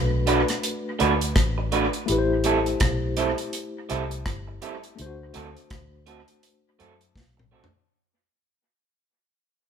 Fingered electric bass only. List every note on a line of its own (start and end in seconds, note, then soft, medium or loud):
0.00 0.43 B1 medium
1.01 1.33 D2 medium
1.36 1.88 A1 medium
2.09 2.73 A1 loud
2.81 3.33 B1 medium
3.91 4.22 C2 medium
4.26 4.58 G1 medium
5.00 5.31 D2 loud
5.36 5.55 D2 medium
5.71 6.23 D2 medium
6.80 7.12 F#2 medium
7.16 7.67 B1 medium